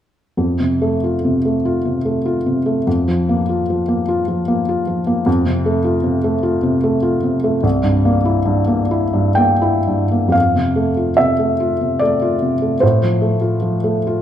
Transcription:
0.37 F2
0.60 C3
0.82 A3
1.04 F4
1.25 C3
1.45 A3
1.65 F4
1.85 C3
2.05 A3
2.25 F4
2.46 C3
2.66 A3
2.87 F2
3.08 F3
3.29 A#3
3.49 F4
3.70 F3
3.88 A#3
4.08 F4
4.28 F3
4.48 A#3
4.69 F4
4.87 F3
5.07 A#3
5.26 F2
5.46 C3
5.66 A3
5.84 F4
6.04 C3
6.24 A3
6.43 F4
6.63 C3
6.83 A3
7.02 F4
7.23 C3
7.44 A3
7.63 C2
7.83 G2
8.05 A#3
8.25 E4
8.45 G2
8.67 A#3
8.91 E4
9.13 G2
9.35 A#3 G5
9.62 E4
9.87 G2
10.12 A#3
10.28 F2 F5
10.55 C3
10.76 A3
10.97 F4
11.17 C3 E5
11.39 A3
11.60 F4
11.81 C3
11.99 A3 D5
12.22 F4
12.42 C3
12.62 A3
12.80 A2 C5
13.03 F3
13.22 A3
13.41 F4
13.62 F3
13.84 A3
14.07 F4

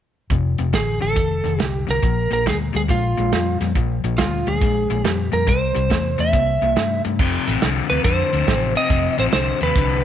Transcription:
0.30 F1 F2 C3, kick, closed hi-hat
0.58 F1 F2 C3, closed hi-hat
0.73 A1 F2 D3 G#4, kick, snare, closed hi-hat
1.01 A1 F2 D3 A4, closed hi-hat
1.16 F1 F2 D#3, kick, closed hi-hat
1.44 F1 F2 D#3, closed hi-hat
1.59 C2 F2 D3 G4, snare, closed hi-hat
1.87 C2 F2 D3 A#4, snare, closed hi-hat
2.02 A#1 A#2 F3, kick, closed hi-hat
2.31 A#1 A#2 F3 A#4, closed hi-hat
2.46 D2 A#2 G3 G#4, kick, snare, closed hi-hat
2.73 D2 A#2 G3 G#4, closed hi-hat
2.88 A#1 A#2 G#3 F4, kick, closed hi-hat
3.18 A#1 A#2 G#3, closed hi-hat
3.32 F2 A#2 G3, snare, closed hi-hat
3.60 F2 A#2 G3, snare, closed hi-hat
3.75 A#1 A#2 F3, kick, closed hi-hat
4.04 A#1 A#2 F3, closed hi-hat
4.18 D2 A#2 G3 F4, kick, snare, closed hi-hat
4.47 D2 A#2 G3 G#4, closed hi-hat
4.61 A#1 A#2 G#3, kick, closed hi-hat
4.90 A#1 A#2 G#3, closed hi-hat
5.03 F2 A#2 G3 G4, snare, closed hi-hat
5.32 F2 A#2 G3 A#4, closed hi-hat
5.47 C2 C3 G3 C5, kick, closed hi-hat
5.75 C2 C3 G3, closed hi-hat
5.90 E2 C3 A3, kick, snare, closed hi-hat
6.18 E2 C3 A3 E5, closed hi-hat
6.33 C2 C3 A#3, kick, closed hi-hat
6.61 C2 C3 A#3, closed hi-hat
6.76 G2 C3 A3, snare, closed hi-hat
7.04 G2 C3 A3, closed hi-hat
7.19 F1 F2 C3, kick, crash
7.47 A1 F2 C3, snare, closed hi-hat
7.62 C2 F2 D3, snare, closed hi-hat
7.90 D2 F2 C3 B4, closed hi-hat
8.04 F2 D3 C5, kick, closed hi-hat
8.33 D2 F2 D3, closed hi-hat
8.47 A1 F2 C3, kick, snare, closed hi-hat
8.75 F2 C3 D#5, closed hi-hat
8.90 F1 F2 C3, kick, snare, closed hi-hat
9.18 A1 F2 C3 C5, snare, closed hi-hat
9.32 C2 F2 D3 C5, snare, closed hi-hat
9.61 D#2 F2 C3 B4, closed hi-hat
9.75 C2 F2 D3, kick, closed hi-hat

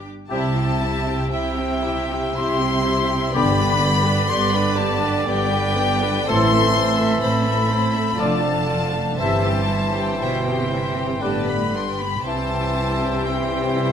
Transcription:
Already playing: G1 G2
0.29 C2 C3 G3 C4 E4 G4 E5 A5
0.33 E5
0.57 C4 E4 G4 G5
0.81 E4 G4 E5
1.06 C4 E4 G4 G5
1.31 C2 C3 E4 G4 E5 G5
1.55 C4 E4 G4 G5
1.82 E4 G4 E5
2.07 G4 G5
2.11 C4 E4
2.34 C2 C3 E4 G4 E5 C6
2.59 C4 E4 G4 G5
2.84 E4 G4 E5
2.88 E4
3.06 G4 G5
3.11 C4 E4
3.29 B4 D5
3.34 G1 G2 D3 G3 B3 D4 G4 D5 B5
3.51 G4 B4
3.58 D4 B4
3.79 B3 B4 D5
3.83 G4
4.01 D4 G4 B4
4.28 G1 G2 B3 G4 B4 D5 C6
4.52 D4 G4 B4 B5
4.75 B3 G4 B4 D5 A5
5.00 D4 G4 B4
5.25 G1 G2 B3 G4 B4 D5 G5
5.50 D4 G4 B4
5.75 B3 G4 B4 D5
6.01 D4 G4 B4
6.24 A2 A4 C5 C6
6.29 A1 A2 E3 A3 C4 E4 A4 C6
6.51 A3 C4 A4 E5
6.74 C4 E4 C5
6.98 A3 C4 A4 E5
7.20 A1 A2 C4 E4 C5 B5
7.45 A3 C4 A4 E5
7.69 C4 E4 C5
7.91 A4 E5
7.95 A3 C4
8.16 F1 F2 D3 F3 F4 D5 A5
8.20 F2 F3 A3 D4
8.42 A3 D4 A4 F5
8.66 F3 F4 D5
8.94 A3 D4 A4 F5
9.17 G1 G2 E3 G3 C4 E4 G4 C5 E5 A5
9.21 G2 E3 C5
9.44 C4 G4 G5
9.69 G3 E4 C5 E5
9.94 C4 G4 G5
10.19 G1 B2 G3 E4 C5 E5 G5
10.45 C4 G4 G5
10.49 G4
10.70 C3 G3 E4 C5 E5
10.94 C4 G4 G5
11.20 G1 G2 A2 D3 G3 B3 D4 G4 B4 D5 G5 A5
11.46 B3 G4 B5
11.73 G2 G3 D4 B4 G5 C6
11.99 B3 G4 B5
12.24 C2 G2 C3 E3 G3 C4 E4 G4 C5 E5 G5 A5
13.24 E3 C5 G5

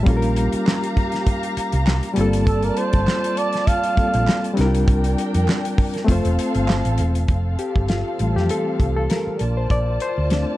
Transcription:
0.03 A#1 G3 A#3 C#4 G4 F5 A#5, kick, closed hi-hat
0.08 F4 A4
0.17 A#4
0.22 closed hi-hat
0.36 closed hi-hat
0.53 muted fingered electric bass stroke, closed hi-hat
0.67 snare, clap
0.84 closed hi-hat
0.97 kick, closed hi-hat
1.12 snare, closed hi-hat
1.27 kick, closed hi-hat
1.43 closed hi-hat
1.57 muted fingered electric bass stroke, closed hi-hat
1.72 C2, closed hi-hat
1.87 snare, clap
2.03 closed hi-hat
2.13 G1 G3 A#3 C4 F4 D5 A5, closed hi-hat
2.19 F4 A4
2.33 closed hi-hat
2.47 A4, kick, closed hi-hat
2.63 A#4, closed hi-hat
2.77 C5, closed hi-hat
2.93 G1, kick, closed hi-hat
3.08 snare, clap
3.24 closed hi-hat
3.37 D5, closed hi-hat
3.53 snare, closed hi-hat
3.67 F5, kick, closed hi-hat
3.84 closed hi-hat
3.96 G3 A#3 C4 F4 A4, muted fingered electric bass stroke, kick, closed hi-hat
4.14 A#1, closed hi-hat
4.27 snare, clap
4.44 closed hi-hat
4.54 G3 C4 D4 A#4 G5, closed hi-hat
4.59 C2 E4 A#4, snare
4.65 F4
4.75 closed hi-hat
4.88 C2, kick, closed hi-hat
5.04 closed hi-hat
5.18 closed hi-hat
5.34 F2, closed hi-hat
5.48 snare, clap
5.65 closed hi-hat
5.78 kick, open hi-hat
5.94 snare, closed hi-hat
6.04 A3 C4 A4 F5, kick, closed hi-hat
6.09 F1 F4 C5
6.25 E1, closed hi-hat
6.39 closed hi-hat
6.54 G1, closed hi-hat
6.68 snare, clap
6.85 A1, closed hi-hat
6.98 E1, closed hi-hat
7.15 closed hi-hat
7.28 F1 C4 A4 F5, kick, closed hi-hat
7.59 G4, closed hi-hat
7.76 G1, kick
7.88 F4, snare, closed hi-hat
8.19 A1 E3 G3 A3, closed hi-hat
8.36 F2 G4, snare
8.49 A4, closed hi-hat
8.80 C2, kick, closed hi-hat
8.96 A4
9.10 A#4, snare, closed hi-hat
9.27 muted fingered electric bass stroke
9.39 A#1 F4 D5 A5, closed hi-hat
9.57 C5
9.70 A#1 D5, kick, closed hi-hat
10.00 C5, closed hi-hat
10.18 D2
10.30 A3 C4 D4, snare, closed hi-hat

